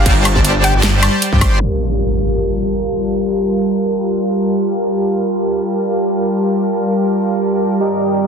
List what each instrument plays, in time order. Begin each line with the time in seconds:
0.06 detuned saw bass G1, supersaw synth G3 G4 C5 D5 A5, kick, closed hi-hat, crash
0.25 closed hi-hat, high woodblock
0.36 kick
0.45 closed hi-hat
0.64 synth pluck G5, closed hi-hat
0.74 detuned saw bass G1, supersaw synth G3 G4 C5 D5 A5
0.83 snare, closed hi-hat
1.03 closed hi-hat, high woodblock
1.22 closed hi-hat
1.33 detuned saw bass G2, supersaw synth G3 G4 C5 D5 G5, kick
1.41 detuned saw bass G1, supersaw synth G3 G4 C5 D5 C6, kick, closed hi-hat, high woodblock
1.61 supersaw synth G3 G4 A#4, analog synth pad G3 F4 A#4, impact
4.70 supersaw synth G3 G4 A#4 F5 A5
7.80 analog synth pad G2 D#3 C4, supersaw synth G3 G4 D5 D#5 A#5